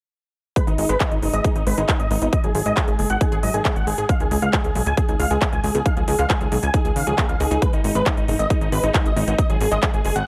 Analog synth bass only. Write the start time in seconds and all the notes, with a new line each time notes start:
0.67 G#1
0.78 G#1
0.89 G#1
1.11 G#1
1.22 F#1
1.33 G#1
1.56 G#1
1.67 G#1
1.78 G#1
2.00 G#1
2.11 G#1
2.22 G#1
2.44 G#1
2.55 G#1
2.66 G#1
2.88 G#1
2.99 F#1
3.10 G#1
3.32 G#1
3.43 G#1
3.54 G#1
3.76 G#1
3.87 G#1
3.98 G#1
4.20 C#2
4.31 C#2
4.42 C#2
4.64 C#2
4.75 B1
4.86 C#2
5.08 C#2
5.20 C#2
5.31 C#2
5.53 C#2
5.64 C#2
5.75 C#2
5.97 C#2
6.08 C#2
6.19 C#2
6.41 C#2
6.52 B1
6.63 C#2
6.85 C#2
6.96 C#2
7.07 C#2
7.29 C#2
7.40 C#2
7.51 C#2
7.73 G#1
7.84 G#1
7.95 G#1
8.17 G#1
8.28 F#1
8.39 G#1
8.61 G#1
8.72 G#1
8.83 G#1
9.05 G#1
9.16 G#1
9.27 G#1
9.49 G#1
9.61 G#1
9.72 G#1
9.94 G#1
10.05 F#1
10.16 G#1